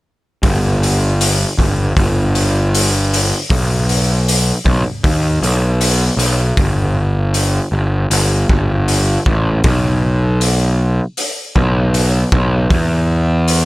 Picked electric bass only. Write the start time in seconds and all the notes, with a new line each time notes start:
0.43 G1
1.58 G1
1.97 G1
3.50 B1
4.65 B1
5.04 D#2
5.42 B1
6.17 B1
6.58 G1
7.72 G1
8.10 G1
8.50 G1
9.26 A1
9.64 B1
11.56 B1
12.32 B1
12.70 E2